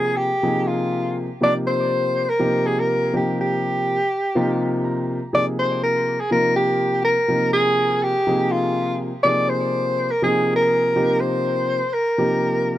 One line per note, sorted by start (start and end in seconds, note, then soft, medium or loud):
0.00 0.28 C3 medium
0.00 0.28 F3 medium
0.00 0.28 A#3 medium
0.00 0.28 D#4 medium
0.00 0.18 G#4 medium
0.00 0.28 G#4 medium
0.17 0.69 G4 medium
0.43 1.26 C3 medium
0.43 1.26 F3 medium
0.43 1.26 A#3 medium
0.43 1.26 D#4 medium
0.43 1.26 G#4 medium
0.68 1.17 F4 medium
1.41 2.24 C3 medium
1.41 2.24 F3 medium
1.41 2.24 A#3 medium
1.41 2.24 D#4 medium
1.41 2.24 G4 medium
1.41 1.54 D5 loud
1.67 2.31 C5 loud
2.29 2.68 A#4 medium
2.39 3.12 C3 medium
2.39 3.12 F3 medium
2.39 3.12 A#3 medium
2.39 3.12 D#4 medium
2.39 3.12 G4 medium
2.67 2.81 G#4 medium
2.80 3.14 A#4 medium
3.13 3.96 C3 medium
3.13 3.96 F3 medium
3.13 3.96 A#3 medium
3.13 3.96 D#4 medium
3.13 3.96 G4 medium
3.13 3.37 G4 medium
3.41 4.82 G4 medium
4.35 5.18 C3 medium
4.35 5.18 F3 medium
4.35 5.18 A#3 medium
4.35 5.18 D#4 medium
4.35 5.18 F4 medium
4.84 5.30 A#5 medium
5.33 6.16 C3 medium
5.33 6.16 F3 medium
5.33 6.16 A#3 medium
5.33 6.16 D#4 medium
5.33 6.16 G#4 medium
5.33 5.45 D5 medium
5.59 5.81 C5 medium
5.83 6.22 A#4 medium
6.20 6.31 G#4 medium
6.31 7.13 C3 medium
6.31 7.14 F3 medium
6.31 7.14 A#3 medium
6.31 7.14 D#4 medium
6.31 7.14 F4 medium
6.31 6.54 A#4 medium
6.56 7.01 G4 medium
7.05 7.50 A#4 medium
7.28 8.11 C3 medium
7.28 8.11 F3 medium
7.28 8.11 A#3 medium
7.28 8.12 D#4 medium
7.28 8.12 A#4 medium
7.53 8.04 G#4 loud
8.03 8.53 G4 medium
8.27 9.10 C3 medium
8.27 9.09 F3 medium
8.27 9.10 A#3 medium
8.27 9.10 D#4 medium
8.27 9.10 G#4 medium
8.52 9.00 F4 medium
9.23 10.07 C3 medium
9.23 10.07 F3 medium
9.23 10.07 A#3 medium
9.23 10.07 D#4 medium
9.23 10.08 G#4 medium
9.23 9.50 D5 loud
9.49 10.12 C5 medium
10.11 10.23 A#4 medium
10.22 10.94 C3 medium
10.22 10.94 F3 medium
10.22 10.95 A#3 medium
10.22 10.95 D#4 medium
10.22 10.96 G#4 medium
10.22 10.53 G#4 medium
10.56 11.22 A#4 medium
10.95 11.79 C3 medium
10.95 11.79 F3 medium
10.95 11.79 A#3 medium
10.95 11.79 D#4 medium
10.95 11.79 G4 medium
11.20 11.95 C5 medium
11.93 12.78 A#4 medium
12.18 12.78 C3 medium
12.18 12.78 F3 medium
12.18 12.78 A#3 medium
12.18 12.78 D#4 medium
12.18 12.78 G4 medium